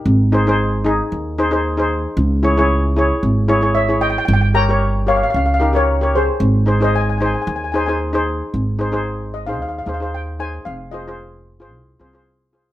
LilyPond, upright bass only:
\new Staff \with { instrumentName = "Upright bass" } { \clef bass \time 4/4 \key aes \major \tempo 4 = 113 aes,,2 ees,2 | des,2 aes,,2 | g,,2 des,2 | aes,,2 ees,2 |
aes,,2 ees,8 ees,4. | f,,2 c,8 c,4. | }